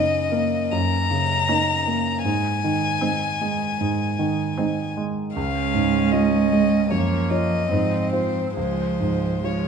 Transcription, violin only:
0, 0, Header, 1, 2, 480
1, 0, Start_track
1, 0, Key_signature, -5, "major"
1, 0, Tempo, 778210
1, 1383, Time_signature, 4, 2, 24, 8
1, 4263, Tempo, 803213
1, 4743, Tempo, 867052
1, 5830, End_track
2, 0, Start_track
2, 0, Title_t, "Violin"
2, 0, Program_c, 0, 40
2, 0, Note_on_c, 0, 75, 68
2, 442, Note_on_c, 0, 82, 70
2, 451, Note_off_c, 0, 75, 0
2, 1380, Note_off_c, 0, 82, 0
2, 1384, Note_on_c, 0, 80, 63
2, 3042, Note_off_c, 0, 80, 0
2, 3302, Note_on_c, 0, 77, 56
2, 3779, Note_on_c, 0, 75, 53
2, 3788, Note_off_c, 0, 77, 0
2, 4260, Note_on_c, 0, 73, 44
2, 4269, Note_off_c, 0, 75, 0
2, 4497, Note_on_c, 0, 75, 48
2, 4506, Note_off_c, 0, 73, 0
2, 4971, Note_off_c, 0, 75, 0
2, 4974, Note_on_c, 0, 72, 45
2, 5209, Note_off_c, 0, 72, 0
2, 5213, Note_on_c, 0, 72, 51
2, 5704, Note_on_c, 0, 73, 41
2, 5712, Note_off_c, 0, 72, 0
2, 5830, Note_off_c, 0, 73, 0
2, 5830, End_track
0, 0, End_of_file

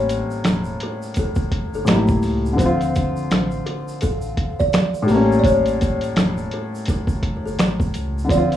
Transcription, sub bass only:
0, 0, Header, 1, 2, 480
1, 0, Start_track
1, 0, Tempo, 714286
1, 1735, Time_signature, 4, 2, 24, 8
1, 5756, End_track
2, 0, Start_track
2, 0, Title_t, "Sub bass"
2, 0, Program_c, 0, 38
2, 0, Note_on_c, 0, 33, 112
2, 153, Note_off_c, 0, 33, 0
2, 296, Note_on_c, 0, 28, 100
2, 508, Note_off_c, 0, 28, 0
2, 1160, Note_on_c, 0, 31, 96
2, 1245, Note_off_c, 0, 31, 0
2, 1259, Note_on_c, 0, 33, 97
2, 1470, Note_off_c, 0, 33, 0
2, 1502, Note_on_c, 0, 37, 99
2, 1711, Note_off_c, 0, 37, 0
2, 1735, Note_on_c, 0, 26, 108
2, 2075, Note_off_c, 0, 26, 0
2, 2222, Note_on_c, 0, 33, 95
2, 2431, Note_off_c, 0, 33, 0
2, 2707, Note_on_c, 0, 33, 99
2, 2914, Note_off_c, 0, 33, 0
2, 3419, Note_on_c, 0, 33, 97
2, 3630, Note_off_c, 0, 33, 0
2, 3655, Note_on_c, 0, 33, 111
2, 3995, Note_off_c, 0, 33, 0
2, 4135, Note_on_c, 0, 28, 103
2, 4348, Note_off_c, 0, 28, 0
2, 5003, Note_on_c, 0, 31, 97
2, 5086, Note_off_c, 0, 31, 0
2, 5103, Note_on_c, 0, 33, 96
2, 5312, Note_off_c, 0, 33, 0
2, 5341, Note_on_c, 0, 37, 87
2, 5551, Note_off_c, 0, 37, 0
2, 5575, Note_on_c, 0, 26, 116
2, 5756, Note_off_c, 0, 26, 0
2, 5756, End_track
0, 0, End_of_file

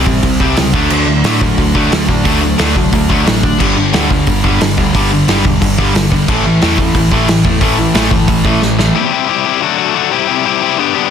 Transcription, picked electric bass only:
0, 0, Header, 1, 2, 480
1, 0, Start_track
1, 0, Tempo, 337079
1, 1293, Time_signature, 4, 2, 24, 8
1, 7526, Tempo, 333148
1, 15906, End_track
2, 0, Start_track
2, 0, Title_t, "Picked electric bass"
2, 0, Program_c, 0, 34
2, 92, Note_on_c, 0, 33, 88
2, 275, Note_off_c, 0, 33, 0
2, 333, Note_on_c, 0, 36, 97
2, 516, Note_off_c, 0, 36, 0
2, 576, Note_on_c, 0, 36, 95
2, 759, Note_off_c, 0, 36, 0
2, 821, Note_on_c, 0, 37, 85
2, 1002, Note_off_c, 0, 37, 0
2, 1052, Note_on_c, 0, 38, 86
2, 1237, Note_off_c, 0, 38, 0
2, 1289, Note_on_c, 0, 38, 97
2, 1476, Note_off_c, 0, 38, 0
2, 1525, Note_on_c, 0, 38, 84
2, 1714, Note_off_c, 0, 38, 0
2, 1766, Note_on_c, 0, 45, 88
2, 2140, Note_off_c, 0, 45, 0
2, 2256, Note_on_c, 0, 38, 93
2, 2441, Note_off_c, 0, 38, 0
2, 2494, Note_on_c, 0, 38, 96
2, 2680, Note_off_c, 0, 38, 0
2, 2734, Note_on_c, 0, 38, 87
2, 2920, Note_off_c, 0, 38, 0
2, 2971, Note_on_c, 0, 45, 93
2, 3159, Note_off_c, 0, 45, 0
2, 3210, Note_on_c, 0, 38, 96
2, 3582, Note_off_c, 0, 38, 0
2, 3696, Note_on_c, 0, 38, 89
2, 3881, Note_off_c, 0, 38, 0
2, 3927, Note_on_c, 0, 36, 83
2, 4116, Note_off_c, 0, 36, 0
2, 4169, Note_on_c, 0, 38, 88
2, 4357, Note_off_c, 0, 38, 0
2, 4410, Note_on_c, 0, 38, 90
2, 4597, Note_off_c, 0, 38, 0
2, 4657, Note_on_c, 0, 33, 83
2, 5025, Note_off_c, 0, 33, 0
2, 5126, Note_on_c, 0, 31, 92
2, 5314, Note_off_c, 0, 31, 0
2, 5370, Note_on_c, 0, 31, 85
2, 5556, Note_off_c, 0, 31, 0
2, 5603, Note_on_c, 0, 38, 93
2, 5975, Note_off_c, 0, 38, 0
2, 6088, Note_on_c, 0, 31, 88
2, 6274, Note_off_c, 0, 31, 0
2, 6328, Note_on_c, 0, 31, 92
2, 6513, Note_off_c, 0, 31, 0
2, 6565, Note_on_c, 0, 31, 87
2, 6750, Note_off_c, 0, 31, 0
2, 6805, Note_on_c, 0, 38, 88
2, 6990, Note_off_c, 0, 38, 0
2, 7044, Note_on_c, 0, 31, 94
2, 7411, Note_off_c, 0, 31, 0
2, 7522, Note_on_c, 0, 31, 95
2, 7708, Note_off_c, 0, 31, 0
2, 7766, Note_on_c, 0, 28, 88
2, 7950, Note_off_c, 0, 28, 0
2, 8008, Note_on_c, 0, 31, 95
2, 8192, Note_off_c, 0, 31, 0
2, 8245, Note_on_c, 0, 31, 95
2, 8431, Note_off_c, 0, 31, 0
2, 8480, Note_on_c, 0, 31, 86
2, 8852, Note_off_c, 0, 31, 0
2, 8967, Note_on_c, 0, 33, 106
2, 9152, Note_off_c, 0, 33, 0
2, 9207, Note_on_c, 0, 33, 90
2, 9392, Note_off_c, 0, 33, 0
2, 9450, Note_on_c, 0, 40, 92
2, 9819, Note_off_c, 0, 40, 0
2, 9921, Note_on_c, 0, 33, 97
2, 10109, Note_off_c, 0, 33, 0
2, 10166, Note_on_c, 0, 33, 94
2, 10352, Note_off_c, 0, 33, 0
2, 10404, Note_on_c, 0, 33, 86
2, 10591, Note_off_c, 0, 33, 0
2, 10638, Note_on_c, 0, 40, 96
2, 10827, Note_off_c, 0, 40, 0
2, 10883, Note_on_c, 0, 33, 105
2, 11254, Note_off_c, 0, 33, 0
2, 11354, Note_on_c, 0, 33, 96
2, 11545, Note_off_c, 0, 33, 0
2, 11599, Note_on_c, 0, 31, 89
2, 11787, Note_off_c, 0, 31, 0
2, 11842, Note_on_c, 0, 33, 96
2, 12029, Note_off_c, 0, 33, 0
2, 12086, Note_on_c, 0, 33, 96
2, 12272, Note_off_c, 0, 33, 0
2, 12325, Note_on_c, 0, 33, 86
2, 12694, Note_off_c, 0, 33, 0
2, 15906, End_track
0, 0, End_of_file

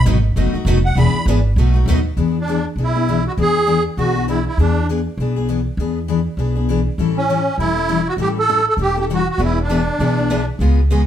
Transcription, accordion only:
0, 0, Header, 1, 2, 480
1, 0, Start_track
1, 0, Tempo, 301054
1, 1534, Time_signature, 4, 2, 24, 8
1, 17644, End_track
2, 0, Start_track
2, 0, Title_t, "Accordion"
2, 0, Program_c, 0, 21
2, 1357, Note_on_c, 0, 78, 82
2, 1542, Note_off_c, 0, 78, 0
2, 1571, Note_on_c, 0, 83, 89
2, 2000, Note_off_c, 0, 83, 0
2, 3832, Note_on_c, 0, 62, 72
2, 4231, Note_off_c, 0, 62, 0
2, 4506, Note_on_c, 0, 64, 86
2, 5166, Note_off_c, 0, 64, 0
2, 5216, Note_on_c, 0, 66, 83
2, 5298, Note_off_c, 0, 66, 0
2, 5434, Note_on_c, 0, 68, 102
2, 6109, Note_off_c, 0, 68, 0
2, 6348, Note_on_c, 0, 66, 92
2, 6788, Note_off_c, 0, 66, 0
2, 6837, Note_on_c, 0, 64, 76
2, 7083, Note_off_c, 0, 64, 0
2, 7131, Note_on_c, 0, 64, 71
2, 7302, Note_off_c, 0, 64, 0
2, 7341, Note_on_c, 0, 62, 78
2, 7766, Note_off_c, 0, 62, 0
2, 11435, Note_on_c, 0, 61, 82
2, 12060, Note_off_c, 0, 61, 0
2, 12103, Note_on_c, 0, 64, 89
2, 12876, Note_off_c, 0, 64, 0
2, 12891, Note_on_c, 0, 66, 89
2, 12974, Note_off_c, 0, 66, 0
2, 13095, Note_on_c, 0, 67, 94
2, 13209, Note_off_c, 0, 67, 0
2, 13381, Note_on_c, 0, 69, 99
2, 13803, Note_off_c, 0, 69, 0
2, 13854, Note_on_c, 0, 69, 90
2, 13936, Note_off_c, 0, 69, 0
2, 14054, Note_on_c, 0, 67, 97
2, 14291, Note_off_c, 0, 67, 0
2, 14350, Note_on_c, 0, 67, 86
2, 14429, Note_off_c, 0, 67, 0
2, 14575, Note_on_c, 0, 66, 93
2, 14793, Note_off_c, 0, 66, 0
2, 14828, Note_on_c, 0, 66, 85
2, 15009, Note_off_c, 0, 66, 0
2, 15038, Note_on_c, 0, 64, 84
2, 15289, Note_off_c, 0, 64, 0
2, 15340, Note_on_c, 0, 62, 79
2, 16671, Note_off_c, 0, 62, 0
2, 17644, End_track
0, 0, End_of_file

